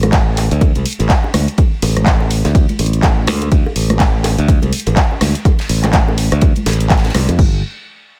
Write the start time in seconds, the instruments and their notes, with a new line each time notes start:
Already playing: fingered electric bass A1
0.03 cross-stick, closed hi-hat, high bongo, high conga
0.13 kick, snare, clap, closed hi-hat, ride
0.37 clap, open hi-hat, ride, high bongo
0.51 fingered electric bass D2, closed hi-hat
0.61 kick, closed hi-hat, ride, high bongo
0.75 fingered electric bass C2, closed hi-hat, ride, high conga
0.86 open hi-hat, ride
0.93 closed hi-hat
0.99 fingered electric bass A1, closed hi-hat, ride, high bongo
1.09 kick, snare, clap, closed hi-hat, ride
1.23 high bongo, low conga
1.34 fingered electric bass D2, cross-stick, open hi-hat, ride, high conga
1.48 closed hi-hat
1.58 kick, closed hi-hat, ride, high bongo
1.82 fingered electric bass A1, open hi-hat, ride, high bongo
1.97 cross-stick, closed hi-hat, high conga
2.06 kick, snare, clap, closed hi-hat, ride
2.21 high bongo
2.30 open hi-hat, ride
2.45 fingered electric bass D2, snare, closed hi-hat, high bongo
2.55 kick, closed hi-hat, ride
2.69 closed hi-hat, ride, high conga
2.79 fingered electric bass A1, open hi-hat, ride, high bongo
2.86 closed hi-hat
2.93 closed hi-hat
3.03 kick, snare, clap, closed hi-hat, ride, high bongo
3.17 low conga
3.27 fingered electric bass D2, cross-stick, open hi-hat, ride, high conga
3.42 closed hi-hat, high bongo
3.52 fingered electric bass D2, kick, closed hi-hat, ride
3.66 high bongo
3.76 fingered electric bass A1, open hi-hat, ride
3.90 cross-stick, closed hi-hat, high conga
3.99 kick, snare, clap, closed hi-hat, ride, high bongo
4.24 clap, open hi-hat, ride, high bongo
4.38 fingered electric bass D2, closed hi-hat
4.48 kick, closed hi-hat, ride
4.62 fingered electric bass C2, closed hi-hat, ride, high bongo, high conga
4.73 open hi-hat, ride
4.80 closed hi-hat
4.86 fingered electric bass A1, closed hi-hat, ride, high bongo
4.96 kick, snare, clap, closed hi-hat, ride
5.11 low conga
5.21 fingered electric bass D2, cross-stick, snare, open hi-hat, ride, high bongo, high conga
5.35 closed hi-hat
5.45 kick, closed hi-hat, ride, high bongo
5.59 snare, ride
5.69 fingered electric bass A1, open hi-hat
5.83 cross-stick, clap, closed hi-hat, ride, high bongo, high conga
5.93 kick, snare, clap, closed hi-hat, ride
6.08 high bongo
6.18 open hi-hat, ride
6.32 fingered electric bass D2, cross-stick, closed hi-hat, ride
6.41 kick, closed hi-hat, ride, high bongo
6.56 closed hi-hat, ride, high conga
6.66 fingered electric bass A1, snare, open hi-hat, ride, high bongo
6.73 closed hi-hat
6.80 closed hi-hat
6.90 kick, snare, clap, closed hi-hat, ride
6.97 snare, ride
7.04 snare, ride, high bongo, low conga
7.09 snare, ride
7.14 fingered electric bass C2, cross-stick, open hi-hat, ride, high conga, low conga
7.29 fingered electric bass F2, closed hi-hat, high bongo
7.39 fingered electric bass G1, kick, crash